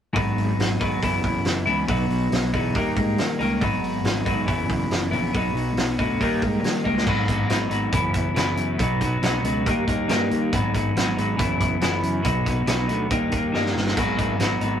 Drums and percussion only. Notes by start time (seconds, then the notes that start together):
0.16 kick, open hi-hat
0.38 open hi-hat
0.60 snare, open hi-hat
0.81 kick, open hi-hat
1.03 kick, open hi-hat
1.24 kick, open hi-hat
1.45 snare, open hi-hat
1.67 open hi-hat
1.88 kick, open hi-hat
2.10 open hi-hat
2.32 snare, open hi-hat
2.54 kick, open hi-hat
2.75 kick, open hi-hat
2.97 kick, open hi-hat
3.18 snare, open hi-hat
3.40 open hi-hat
3.61 kick, open hi-hat
3.84 open hi-hat
4.05 snare, open hi-hat
4.26 kick, open hi-hat
4.48 kick, open hi-hat
4.70 kick, open hi-hat
4.91 snare, open hi-hat
5.13 open hi-hat
5.35 kick, open hi-hat
5.57 open hi-hat
5.77 snare, open hi-hat
5.99 kick, open hi-hat
6.21 kick, open hi-hat
6.42 kick, open hi-hat
6.64 snare, open hi-hat
6.85 kick
6.98 snare
7.07 kick, crash
7.28 kick, closed hi-hat
7.50 snare, closed hi-hat
7.71 closed hi-hat
7.93 kick, closed hi-hat
8.14 kick, closed hi-hat
8.36 snare, closed hi-hat
8.57 closed hi-hat
8.79 kick, closed hi-hat
9.01 kick, closed hi-hat
9.23 snare, closed hi-hat
9.44 closed hi-hat
9.66 kick, closed hi-hat
9.88 kick, closed hi-hat
10.09 snare, closed hi-hat
10.31 closed hi-hat
10.53 kick, closed hi-hat
10.75 kick, closed hi-hat
10.97 snare, closed hi-hat
11.18 closed hi-hat
11.39 kick, closed hi-hat
11.61 kick, closed hi-hat
11.81 snare, closed hi-hat
12.03 closed hi-hat
12.24 kick, closed hi-hat
12.46 kick, closed hi-hat
12.67 snare, closed hi-hat
12.89 closed hi-hat
13.11 kick, closed hi-hat
13.32 kick, closed hi-hat
13.54 snare
13.66 snare
13.77 snare
13.87 snare
13.97 kick, closed hi-hat, crash
14.19 kick, closed hi-hat
14.40 snare, closed hi-hat
14.61 closed hi-hat